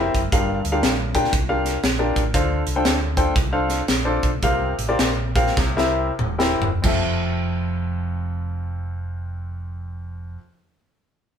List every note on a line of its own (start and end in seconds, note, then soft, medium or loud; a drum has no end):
0.00 0.20 C4 medium
0.00 0.20 E4 medium
0.00 0.20 G4 medium
0.00 0.20 A#4 medium
0.00 0.20 E5 medium
0.15 0.30 F#1 medium
0.15 kick medium
0.15 closed hi-hat medium
0.32 0.59 G1 loud
0.32 1.11 G2 medium
0.32 0.59 D4 medium
0.32 0.59 F4 medium
0.32 0.59 G4 medium
0.32 0.59 A#4 medium
0.32 0.59 F5 loud
0.32 kick loud
0.32 closed hi-hat loud
0.65 0.80 D2 medium
0.65 closed hi-hat medium
0.72 0.93 D4 medium
0.72 0.93 F4 medium
0.72 0.93 G4 medium
0.72 0.93 A#4 medium
0.72 0.93 F5 loud
0.83 1.26 A#1 medium
0.83 snare loud
0.83 closed hi-hat medium
1.15 1.30 D4 medium
1.15 1.30 F4 medium
1.15 1.30 G4 medium
1.15 1.30 A#4 medium
1.15 1.30 G5 loud
1.15 kick loud
1.15 closed hi-hat medium
1.24 snare soft
1.33 1.76 C2 loud
1.33 kick loud
1.33 closed hi-hat medium
1.49 1.76 D4 medium
1.49 1.76 F4 medium
1.49 1.76 G4 medium
1.49 1.76 A#4 medium
1.49 1.76 F5 loud
1.65 snare soft
1.65 closed hi-hat medium
1.84 2.11 A#1 medium
1.84 snare medium
1.84 closed hi-hat medium
1.99 2.21 D4 medium
1.99 2.22 F4 medium
1.99 2.22 G4 medium
1.99 2.21 A#4 medium
1.99 2.21 D5 medium
2.16 2.31 A1 medium
2.16 kick medium
2.16 closed hi-hat medium
2.34 2.61 D2 loud
2.34 3.13 D3 medium
2.34 2.61 D4 medium
2.34 2.61 F4 medium
2.34 2.61 A4 medium
2.34 2.61 C5 medium
2.34 2.61 F5 medium
2.34 kick loud
2.34 closed hi-hat loud
2.67 2.82 C2 medium
2.67 closed hi-hat medium
2.75 2.96 D4 medium
2.75 2.95 F4 medium
2.75 2.96 A4 medium
2.75 2.96 C5 medium
2.75 2.96 G5 medium
2.85 3.28 D2 medium
2.85 snare loud
2.85 closed hi-hat medium
3.17 3.33 D4 medium
3.17 3.33 F4 medium
3.17 3.33 A4 medium
3.17 3.33 C5 medium
3.17 3.33 G5 medium
3.17 kick loud
3.17 closed hi-hat medium
3.36 3.80 C2 loud
3.36 kick loud
3.36 closed hi-hat medium
3.52 3.81 D4 medium
3.52 3.81 F4 medium
3.52 3.81 A4 medium
3.52 3.81 C5 medium
3.52 3.81 F5 medium
3.69 snare soft
3.69 closed hi-hat medium
3.88 4.17 A#1 medium
3.88 snare loud
3.88 closed hi-hat medium
4.05 4.29 D4 medium
4.05 4.29 F4 medium
4.05 4.29 A4 medium
4.05 4.29 C5 medium
4.05 4.29 D5 loud
4.23 4.40 B1 medium
4.23 kick medium
4.23 closed hi-hat medium
4.42 4.72 C2 loud
4.42 5.31 C3 medium
4.42 4.72 C4 medium
4.42 4.72 F4 medium
4.42 4.72 G4 medium
4.42 4.72 A#4 medium
4.42 4.72 F5 loud
4.42 kick loud
4.42 closed hi-hat medium
4.78 4.96 A1 medium
4.78 closed hi-hat medium
4.88 5.11 C4 medium
4.88 5.11 F4 medium
4.88 5.11 G4 medium
4.88 5.11 A#4 medium
4.88 5.11 D5 loud
4.99 5.49 A#1 medium
4.99 snare loud
4.99 closed hi-hat medium
5.35 5.53 C4 medium
5.35 5.53 F4 medium
5.35 5.53 G4 medium
5.35 5.53 A#4 medium
5.35 5.53 F5 loud
5.35 kick loud
5.35 closed hi-hat medium
5.47 snare soft
5.57 6.09 C2 loud
5.57 6.55 C3 medium
5.57 kick loud
5.57 snare medium
5.77 6.10 C4 medium
5.77 6.10 E4 medium
5.77 6.10 G4 medium
5.77 6.10 A#4 medium
5.77 6.10 E5 medium
5.77 snare medium
6.19 6.53 D#1 medium
6.19 mid tom medium
6.38 6.67 C4 medium
6.38 6.67 E4 medium
6.38 6.67 G4 medium
6.38 6.67 A#4 medium
6.38 6.67 G5 medium
6.38 snare loud
6.60 6.80 E1 medium
6.60 floor tom medium
6.82 10.36 F1 loud
6.82 10.37 F2 medium
6.82 10.35 C4 medium
6.82 10.36 F4 medium
6.82 10.37 A4 medium
6.82 10.39 E5 medium
6.82 kick loud
6.82 crash medium